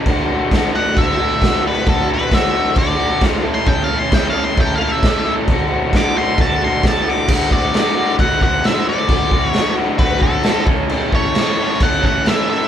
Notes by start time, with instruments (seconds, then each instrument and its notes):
0.03 overdriven electric guitar D2 A2, transistor combo organ F#4 A4, kick, crash
0.07 overdriven electric guitar D3 A3 F#4, transistor combo organ D5
0.28 overdriven electric guitar A3 F#4
0.33 overdriven electric guitar D3
0.50 overdriven electric guitar A2 D3 A3, kick, snare, crash
0.55 overdriven electric guitar F#4
0.72 overdriven electric guitar A2 D3 A3 F#4, lead electric guitar F#5
0.76 overdriven electric guitar D2
0.93 overdriven electric guitar A2 D3 A3, kick
0.97 overdriven electric guitar F#4, lead electric guitar E5, crash
1.17 overdriven electric guitar A2 D3 A3 F#4
1.22 overdriven electric guitar D2
1.39 overdriven electric guitar A2 D3 A3, kick, crash
1.44 overdriven electric guitar F#4, snare
1.62 overdriven electric guitar A3 F#4
1.67 overdriven electric guitar D3, lead electric guitar B4
1.84 overdriven electric guitar D2 A2 D3 A3, kick, crash
1.89 overdriven electric guitar F#4, lead electric guitar A4
2.08 overdriven electric guitar A3 F#4
2.12 overdriven electric guitar D3, lead electric guitar B4
2.29 overdriven electric guitar A2 D3 A3, kick, crash
2.33 overdriven electric guitar F#4, lead electric guitar E5, snare
2.52 overdriven electric guitar A2 D3 A3 F#4
2.56 overdriven electric guitar D2
2.73 overdriven electric guitar A2 D3 A3, kick, crash
2.78 overdriven electric guitar F#4, lead electric guitar D5
2.96 overdriven electric guitar A2 D3 A3 F#4
3.01 overdriven electric guitar D2
3.20 overdriven electric guitar A2 D3 A3, kick, snare, crash
3.24 overdriven electric guitar F#4
3.41 overdriven electric guitar C#4 E4 A4, transistor combo organ E4 A4
3.45 overdriven electric guitar A2 E3 A3, transistor combo organ C#5
3.55 lead electric guitar C6
3.64 overdriven electric guitar A2 E3 A3 C#4, lead electric guitar G5, kick, crash
3.68 overdriven electric guitar E4 A4
3.84 lead electric guitar F5
3.88 overdriven electric guitar C#4 E4 A4
3.93 overdriven electric guitar A3
3.99 lead electric guitar C6
4.11 overdriven electric guitar A3 C#4 E4, lead electric guitar G5, kick, snare, crash
4.15 overdriven electric guitar A4
4.30 overdriven electric guitar A4, lead electric guitar F5
4.34 overdriven electric guitar A2 E3 A3 C#4 E4
4.44 lead electric guitar C6
4.55 overdriven electric guitar A3 C#4 E4, kick, crash
4.60 overdriven electric guitar A4, lead electric guitar G5
4.76 overdriven electric guitar A4, lead electric guitar F5
4.80 overdriven electric guitar A2 E3 A3 C#4 E4
4.91 lead electric guitar E5
5.02 overdriven electric guitar A3 C#4 E4, kick, snare, crash
5.07 overdriven electric guitar A4
5.25 overdriven electric guitar C#4 E4 A4
5.30 overdriven electric guitar A3
5.46 overdriven electric guitar D2 A2 D3, transistor combo organ F#4 A4, kick, crash
5.50 overdriven electric guitar A3 F#4, transistor combo organ D5
5.69 overdriven electric guitar A3 F#4
5.75 overdriven electric guitar D3
5.92 overdriven electric guitar A2 D3 A3, kick, snare, crash
5.97 overdriven electric guitar F#4, lead electric guitar D6
6.16 overdriven electric guitar A2 D3 A3 F#4, lead electric guitar C6
6.20 overdriven electric guitar D2
6.38 overdriven electric guitar A2 D3 A3, lead electric guitar A5, kick, crash
6.42 overdriven electric guitar F#4
6.61 overdriven electric guitar A2 D3 A3 F#4, lead electric guitar C6
6.66 overdriven electric guitar D2
6.83 overdriven electric guitar A2 D3 A3, kick, snare, crash
6.88 overdriven electric guitar F#4, lead electric guitar A5
7.06 overdriven electric guitar A3 F#4, lead electric guitar D6
7.11 overdriven electric guitar D3
7.28 overdriven electric guitar D2 A2 D3 A3, kick, crash
7.33 overdriven electric guitar F#4
7.51 overdriven electric guitar A3 F#4, lead electric guitar D5, kick
7.56 overdriven electric guitar D3
7.72 overdriven electric guitar A2 D3 A3, snare, crash
7.77 overdriven electric guitar F#4
7.95 overdriven electric guitar A2 D3 A3 F#4
8.00 overdriven electric guitar D2
8.17 overdriven electric guitar A2 D3 A3, lead electric guitar F#5, kick, crash
8.22 overdriven electric guitar F#4
8.41 overdriven electric guitar A2 D3 A3 F#4, lead electric guitar F#5, kick
8.46 overdriven electric guitar D2
8.64 overdriven electric guitar A2 D3 A3, lead electric guitar E5, snare, crash
8.69 overdriven electric guitar F#4
8.87 overdriven electric guitar A3 F#4, lead electric guitar D5
8.91 overdriven electric guitar D3
9.09 overdriven electric guitar D2 A2 D3 A3, kick, crash
9.14 overdriven electric guitar F#4
9.31 overdriven electric guitar A3 F#4, kick
9.37 overdriven electric guitar D3
9.47 lead electric guitar C#5
9.54 overdriven electric guitar A2 D3, snare, crash
9.58 overdriven electric guitar A3 F#4
9.77 overdriven electric guitar D3 A3 F#4
9.81 overdriven electric guitar D2 A2
9.99 overdriven electric guitar A2 D3 A3, lead electric guitar B4, kick, crash
10.03 overdriven electric guitar F#4
10.21 overdriven electric guitar A2 D3 A3 F#4, lead electric guitar A4, kick
10.27 overdriven electric guitar D2
10.43 overdriven electric guitar A2 D3 A3, snare, crash
10.47 overdriven electric guitar F#4
10.66 overdriven electric guitar E3 A3 C#4 E4 A4, kick
10.71 overdriven electric guitar A2
10.89 overdriven electric guitar A2 E3 A3 C#4, crash
10.94 overdriven electric guitar E4 A4
11.12 overdriven electric guitar C#4 E4 A4, lead electric guitar C#5, kick
11.17 overdriven electric guitar A3
11.34 overdriven electric guitar A3 C#4 E4 A4, snare, crash
11.56 overdriven electric guitar E3 A3 C#4 E4 A4
11.61 overdriven electric guitar A2
11.80 overdriven electric guitar A3 C#4 E4, lead electric guitar F#5, kick, crash
11.85 overdriven electric guitar A4
12.02 overdriven electric guitar E3 A3 C#4 E4 A4, lead electric guitar F#5, kick
12.07 overdriven electric guitar A2
12.25 overdriven electric guitar A3 C#4 E4, lead electric guitar E5, snare, crash
12.30 overdriven electric guitar A4
12.49 overdriven electric guitar C#4 E4 A4, lead electric guitar E5
12.54 overdriven electric guitar A3